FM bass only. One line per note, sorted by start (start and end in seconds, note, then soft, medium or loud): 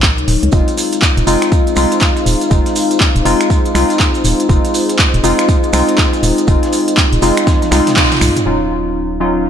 0.00 0.20 A#1 loud
0.18 0.24 C#2 loud
0.28 0.37 D#1 loud
0.43 0.49 C#2 medium
0.53 0.62 F1 medium
1.17 1.23 D#1 loud
1.27 1.36 F1 medium
1.77 1.86 C2 medium
2.26 2.36 D#1 medium
2.51 2.60 F1 medium
3.16 3.22 D#1 loud
3.25 3.35 F1 medium
3.75 3.84 C2 loud
4.24 4.34 D#1 medium
4.49 4.59 F1 medium
5.14 5.20 D#1 loud
5.24 5.33 F1 medium
5.73 5.83 C2 medium
6.23 6.32 D#1 medium
6.48 6.57 F1 loud
7.13 7.19 D#1 loud
7.22 7.32 F1 medium
7.72 7.81 C2 loud
8.21 8.31 C2 medium
8.46 9.50 D#1 medium